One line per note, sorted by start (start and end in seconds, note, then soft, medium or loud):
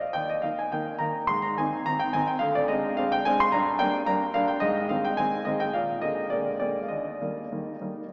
0.01 0.16 F5 medium
0.13 0.43 D#2 soft
0.13 0.29 G5 medium
0.30 0.44 D#5 medium
0.42 0.64 D#3 soft
0.42 0.64 A#3 soft
0.42 0.65 D#4 soft
0.42 0.58 F5 medium
0.59 0.73 G#5 medium
0.72 0.93 D#3 soft
0.72 0.94 A#3 soft
0.72 0.94 D#4 soft
0.72 1.01 G5 medium
0.99 1.21 D#3 soft
0.99 1.21 A#3 soft
0.99 1.21 D#4 soft
0.99 1.25 A#5 medium
1.27 1.56 G#2 soft
1.27 1.43 C6 medium
1.42 1.57 A#5 medium
1.58 1.78 D#3 soft
1.58 1.79 C4 soft
1.58 1.79 D#4 soft
1.58 1.83 G#5 medium
1.86 2.06 D#3 soft
1.86 2.06 C4 soft
1.86 2.07 D#4 soft
1.86 2.00 A#5 medium
1.99 2.13 G5 medium
2.13 2.34 D#3 soft
2.13 2.34 C4 soft
2.13 2.34 D#4 soft
2.13 2.27 G#5 medium
2.27 2.41 G5 medium
2.39 2.68 D2 medium
2.39 2.54 F5 medium
2.55 2.69 D5 medium
2.68 2.89 G#3 soft
2.68 2.89 C4 soft
2.68 2.89 D4 soft
2.68 2.93 D#5 medium
2.97 3.17 G#3 soft
2.97 3.17 C4 soft
2.97 3.18 D4 soft
2.97 3.10 F5 medium
3.12 3.25 G5 medium
3.25 3.45 G#3 soft
3.25 3.45 C4 soft
3.25 3.45 D4 soft
3.25 3.38 G#5 medium
3.40 3.52 C6 medium
3.52 3.79 G2 medium
3.52 3.79 A#5 medium
3.79 3.99 G3 soft
3.79 4.00 A#3 soft
3.79 4.00 D4 soft
3.79 3.95 G5 medium
4.06 4.27 G3 soft
4.06 4.27 A#3 soft
4.06 4.27 D4 soft
4.06 4.23 A#5 medium
4.34 4.55 G3 soft
4.34 4.54 A#3 soft
4.34 4.55 D4 medium
4.34 4.48 F5 medium
4.48 4.61 G5 medium
4.60 4.89 G#2 medium
4.60 4.89 D#5 medium
4.89 5.10 D#3 soft
4.89 5.10 G#3 soft
4.89 5.10 C4 soft
4.89 5.03 F5 medium
5.04 5.18 G5 medium
5.17 5.38 D#3 soft
5.17 5.38 G#3 soft
5.17 5.38 C4 soft
5.17 5.45 G#5 medium
5.45 5.66 D#3 soft
5.45 5.66 G#3 soft
5.45 5.66 C4 soft
5.45 5.59 D#5 medium
5.60 5.74 G5 medium
5.73 6.01 A#2 medium
5.73 5.90 F5 medium
6.02 6.23 D3 soft
6.02 6.23 G#3 soft
6.02 6.23 A#3 soft
6.02 6.28 D#5 medium
6.30 6.52 D3 soft
6.30 6.52 G#3 soft
6.30 6.53 A#3 soft
6.30 6.57 D5 medium
6.60 6.82 D3 soft
6.60 6.82 G#3 soft
6.60 6.83 A#3 soft
6.60 6.80 D5 medium
6.83 6.90 F5 soft
6.88 7.19 D#2 soft
6.88 8.13 D#5 medium
7.21 7.43 D#3 soft
7.21 7.43 G3 soft
7.21 7.43 A#3 soft
7.52 7.73 D#3 soft
7.52 7.74 G3 soft
7.52 7.74 A#3 soft
7.81 8.03 D#3 soft
7.81 8.03 G3 soft
7.81 8.03 A#3 soft